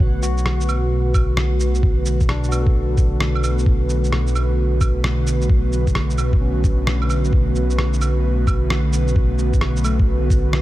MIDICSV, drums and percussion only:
0, 0, Header, 1, 2, 480
1, 0, Start_track
1, 0, Time_signature, 4, 2, 24, 8
1, 0, Key_signature, 2, "minor"
1, 0, Tempo, 458015
1, 11127, End_track
2, 0, Start_track
2, 0, Title_t, "Drums"
2, 0, Note_on_c, 9, 36, 107
2, 104, Note_off_c, 9, 36, 0
2, 239, Note_on_c, 9, 82, 53
2, 344, Note_off_c, 9, 82, 0
2, 395, Note_on_c, 9, 82, 28
2, 478, Note_on_c, 9, 37, 97
2, 500, Note_off_c, 9, 82, 0
2, 583, Note_off_c, 9, 37, 0
2, 636, Note_on_c, 9, 82, 32
2, 721, Note_off_c, 9, 82, 0
2, 721, Note_on_c, 9, 75, 58
2, 721, Note_on_c, 9, 82, 53
2, 825, Note_off_c, 9, 75, 0
2, 825, Note_off_c, 9, 82, 0
2, 1199, Note_on_c, 9, 36, 97
2, 1199, Note_on_c, 9, 75, 65
2, 1199, Note_on_c, 9, 82, 55
2, 1304, Note_off_c, 9, 36, 0
2, 1304, Note_off_c, 9, 75, 0
2, 1304, Note_off_c, 9, 82, 0
2, 1437, Note_on_c, 9, 37, 100
2, 1542, Note_off_c, 9, 37, 0
2, 1677, Note_on_c, 9, 82, 57
2, 1782, Note_off_c, 9, 82, 0
2, 1834, Note_on_c, 9, 82, 31
2, 1919, Note_on_c, 9, 36, 110
2, 1939, Note_off_c, 9, 82, 0
2, 2024, Note_off_c, 9, 36, 0
2, 2156, Note_on_c, 9, 82, 54
2, 2261, Note_off_c, 9, 82, 0
2, 2313, Note_on_c, 9, 82, 30
2, 2315, Note_on_c, 9, 36, 61
2, 2400, Note_on_c, 9, 37, 102
2, 2418, Note_off_c, 9, 82, 0
2, 2420, Note_off_c, 9, 36, 0
2, 2505, Note_off_c, 9, 37, 0
2, 2556, Note_on_c, 9, 82, 31
2, 2640, Note_off_c, 9, 82, 0
2, 2640, Note_on_c, 9, 75, 56
2, 2640, Note_on_c, 9, 82, 53
2, 2745, Note_off_c, 9, 75, 0
2, 2745, Note_off_c, 9, 82, 0
2, 2794, Note_on_c, 9, 36, 101
2, 2899, Note_off_c, 9, 36, 0
2, 3119, Note_on_c, 9, 36, 103
2, 3119, Note_on_c, 9, 82, 55
2, 3223, Note_off_c, 9, 82, 0
2, 3224, Note_off_c, 9, 36, 0
2, 3359, Note_on_c, 9, 37, 105
2, 3463, Note_off_c, 9, 37, 0
2, 3515, Note_on_c, 9, 75, 51
2, 3602, Note_off_c, 9, 75, 0
2, 3602, Note_on_c, 9, 75, 60
2, 3602, Note_on_c, 9, 82, 55
2, 3707, Note_off_c, 9, 75, 0
2, 3707, Note_off_c, 9, 82, 0
2, 3760, Note_on_c, 9, 82, 31
2, 3840, Note_on_c, 9, 36, 116
2, 3865, Note_off_c, 9, 82, 0
2, 3944, Note_off_c, 9, 36, 0
2, 4082, Note_on_c, 9, 82, 53
2, 4186, Note_off_c, 9, 82, 0
2, 4239, Note_on_c, 9, 82, 29
2, 4323, Note_on_c, 9, 37, 101
2, 4343, Note_off_c, 9, 82, 0
2, 4428, Note_off_c, 9, 37, 0
2, 4478, Note_on_c, 9, 82, 31
2, 4563, Note_off_c, 9, 82, 0
2, 4563, Note_on_c, 9, 75, 55
2, 4563, Note_on_c, 9, 82, 52
2, 4668, Note_off_c, 9, 75, 0
2, 4668, Note_off_c, 9, 82, 0
2, 5040, Note_on_c, 9, 36, 102
2, 5041, Note_on_c, 9, 75, 62
2, 5041, Note_on_c, 9, 82, 53
2, 5145, Note_off_c, 9, 36, 0
2, 5145, Note_off_c, 9, 75, 0
2, 5145, Note_off_c, 9, 82, 0
2, 5283, Note_on_c, 9, 37, 102
2, 5388, Note_off_c, 9, 37, 0
2, 5523, Note_on_c, 9, 82, 55
2, 5628, Note_off_c, 9, 82, 0
2, 5677, Note_on_c, 9, 82, 29
2, 5759, Note_on_c, 9, 36, 115
2, 5782, Note_off_c, 9, 82, 0
2, 5864, Note_off_c, 9, 36, 0
2, 6000, Note_on_c, 9, 82, 50
2, 6104, Note_off_c, 9, 82, 0
2, 6155, Note_on_c, 9, 36, 60
2, 6156, Note_on_c, 9, 82, 28
2, 6237, Note_on_c, 9, 37, 101
2, 6260, Note_off_c, 9, 36, 0
2, 6261, Note_off_c, 9, 82, 0
2, 6342, Note_off_c, 9, 37, 0
2, 6396, Note_on_c, 9, 82, 29
2, 6477, Note_off_c, 9, 82, 0
2, 6477, Note_on_c, 9, 75, 53
2, 6477, Note_on_c, 9, 82, 50
2, 6582, Note_off_c, 9, 75, 0
2, 6582, Note_off_c, 9, 82, 0
2, 6634, Note_on_c, 9, 36, 102
2, 6739, Note_off_c, 9, 36, 0
2, 6959, Note_on_c, 9, 36, 103
2, 6960, Note_on_c, 9, 82, 53
2, 7064, Note_off_c, 9, 36, 0
2, 7065, Note_off_c, 9, 82, 0
2, 7201, Note_on_c, 9, 37, 104
2, 7306, Note_off_c, 9, 37, 0
2, 7354, Note_on_c, 9, 75, 46
2, 7439, Note_off_c, 9, 75, 0
2, 7439, Note_on_c, 9, 75, 56
2, 7439, Note_on_c, 9, 82, 52
2, 7544, Note_off_c, 9, 75, 0
2, 7544, Note_off_c, 9, 82, 0
2, 7594, Note_on_c, 9, 82, 29
2, 7679, Note_on_c, 9, 36, 106
2, 7699, Note_off_c, 9, 82, 0
2, 7784, Note_off_c, 9, 36, 0
2, 7917, Note_on_c, 9, 82, 49
2, 8022, Note_off_c, 9, 82, 0
2, 8073, Note_on_c, 9, 82, 27
2, 8159, Note_on_c, 9, 37, 100
2, 8178, Note_off_c, 9, 82, 0
2, 8264, Note_off_c, 9, 37, 0
2, 8316, Note_on_c, 9, 82, 29
2, 8399, Note_off_c, 9, 82, 0
2, 8399, Note_on_c, 9, 75, 54
2, 8399, Note_on_c, 9, 82, 48
2, 8504, Note_off_c, 9, 75, 0
2, 8504, Note_off_c, 9, 82, 0
2, 8878, Note_on_c, 9, 36, 98
2, 8880, Note_on_c, 9, 75, 60
2, 8880, Note_on_c, 9, 82, 52
2, 8983, Note_off_c, 9, 36, 0
2, 8985, Note_off_c, 9, 75, 0
2, 8985, Note_off_c, 9, 82, 0
2, 9122, Note_on_c, 9, 37, 102
2, 9226, Note_off_c, 9, 37, 0
2, 9359, Note_on_c, 9, 82, 50
2, 9463, Note_off_c, 9, 82, 0
2, 9516, Note_on_c, 9, 82, 28
2, 9598, Note_on_c, 9, 36, 104
2, 9620, Note_off_c, 9, 82, 0
2, 9703, Note_off_c, 9, 36, 0
2, 9837, Note_on_c, 9, 82, 49
2, 9941, Note_off_c, 9, 82, 0
2, 9993, Note_on_c, 9, 82, 28
2, 9994, Note_on_c, 9, 36, 58
2, 10074, Note_on_c, 9, 37, 97
2, 10098, Note_off_c, 9, 36, 0
2, 10098, Note_off_c, 9, 82, 0
2, 10179, Note_off_c, 9, 37, 0
2, 10234, Note_on_c, 9, 82, 28
2, 10317, Note_off_c, 9, 82, 0
2, 10317, Note_on_c, 9, 75, 57
2, 10317, Note_on_c, 9, 82, 51
2, 10422, Note_off_c, 9, 75, 0
2, 10422, Note_off_c, 9, 82, 0
2, 10475, Note_on_c, 9, 36, 97
2, 10580, Note_off_c, 9, 36, 0
2, 10798, Note_on_c, 9, 36, 96
2, 10801, Note_on_c, 9, 82, 50
2, 10903, Note_off_c, 9, 36, 0
2, 10905, Note_off_c, 9, 82, 0
2, 11037, Note_on_c, 9, 37, 95
2, 11127, Note_off_c, 9, 37, 0
2, 11127, End_track
0, 0, End_of_file